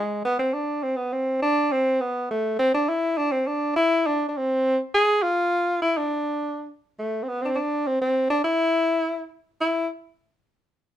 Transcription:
Already playing: G#3
0.25 B3
0.39 C4
0.53 D4
0.83 C4
0.96 B3
1.13 C4
1.42 D4
1.72 C4
2.01 B3
2.31 A3
2.59 C4
2.74 D4
2.89 E4
3.18 D4
3.32 C4
3.47 D4
3.76 E4
4.07 D4
4.29 D4
4.37 C4
4.94 G#4
5.23 F4
5.82 E4
5.97 D4
6.99 A3
7.23 C4
7.28 B3
7.42 C4 D4
7.48 C4
7.55 D4
7.87 C4
8.01 C4
8.30 D4
8.44 E4
9.61 E4

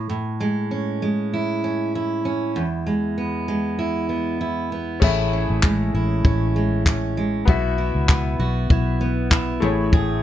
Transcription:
0.10 A2
0.40 G#3
0.71 C#4
1.02 G#3
1.33 E4
1.64 C#4
1.95 E4
2.25 C#4
2.56 E2
2.86 G#3
3.18 B3
3.48 G#3
3.79 E4
4.09 B3
4.41 E4
4.72 B3
5.00 A1 A2 A3 C#4 E4 G#4, kick, crash
5.04 E5
5.33 C#4
5.50 A1
5.63 G#3, kick, clap
5.94 A1 E4
6.25 A1 C#4, kick
6.56 G#3
6.86 C#4, kick, clap
7.17 G#3
7.45 B1 B2 B3 E4 F#4, kick
7.50 E5
7.78 E4
7.95 C#2
8.09 B3, kick, clap
8.39 B1 F#4
8.70 B1 E4, kick
9.01 B3
9.30 E4, kick, clap
9.60 A1 A2 A3 E4 G#4
9.64 C#5
9.93 A2 G#4, kick

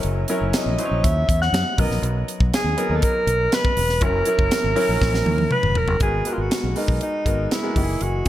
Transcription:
Already playing: F#3 C#4 E4 A#4
0.03 F#1, closed hi-hat
0.28 F#3 C#4 E4 A#4, closed hi-hat
0.41 F#1
0.53 D#5, snare, closed hi-hat
0.66 A#1
0.78 F#3 C#4 E4 C5, closed hi-hat
0.85 C#5
0.91 A#1
1.04 D#2 E5, kick, closed hi-hat
1.29 E2, kick, closed hi-hat
1.41 F#5, snare
1.53 F#2, snare, closed hi-hat
1.77 B1 F#3 B3 C#4 A#4 D#5, kick, open hi-hat
1.85 D#4
1.90 A#1, snare
2.02 B1, closed hi-hat
2.28 closed hi-hat
2.40 B1, kick
2.54 G#4, snare, closed hi-hat
2.64 D#2
2.77 F#3 B3 D#4 A#4, closed hi-hat
2.90 D#2 F#3 B3 D#4 A#4
2.96 A4
3.02 A#4, kick, closed hi-hat
3.27 B1, closed hi-hat
3.52 B4, snare, closed hi-hat
3.65 kick
3.77 E1, open hi-hat
3.89 snare
4.01 F#1 F#3 C#4 E4 A#4, kick, closed hi-hat
4.25 F#3 C#4 E4 A#4, closed hi-hat
4.39 F#1, kick
4.51 snare, closed hi-hat
4.64 G#1
4.75 F#3 C#4 E4 A#4, open hi-hat
4.89 A#1
5.02 A#1, kick, snare
5.14 snare
5.26 D#2, high tom
5.38 high tom
5.51 B4, mid tom
5.63 F#1, mid tom
5.75 E1 A#4, floor tom
5.88 F#1, floor tom
6.00 G#1 G#3 B3 F#4 G#4 A#4, kick, closed hi-hat
6.25 G#3 B3 F#4 A#4, closed hi-hat
6.33 F4
6.38 G#1 F#4
6.51 snare, closed hi-hat
6.64 B1
6.75 G#3 B3 D#4 F#4 A#4, open hi-hat
6.88 B1, kick
7.01 D#4, closed hi-hat
7.25 G#1 G#3 B3 F#4 A#4, kick, closed hi-hat
7.51 E4, snare, closed hi-hat
7.63 G#3 B3 F#4 A#4
7.76 F#1 E3 A#3 D#4 G4, kick, open hi-hat
7.83 G#4
8.01 F#1 F#4, closed hi-hat
8.25 E3

